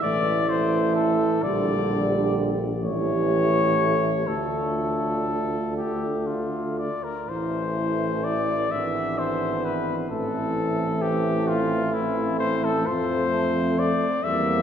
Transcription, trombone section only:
0.03 A3
0.48 A3
1.42 G3
2.82 A3
4.28 A3
7.26 A3
8.71 B3
10.10 A3
12.88 A3
14.26 A#3

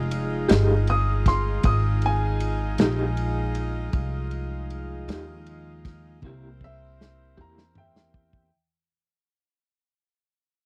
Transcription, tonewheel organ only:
Already playing: G#3 D#4 F4
3.93 F3 G#3 D#4 F4
6.22 A#3 C4 E4 G4

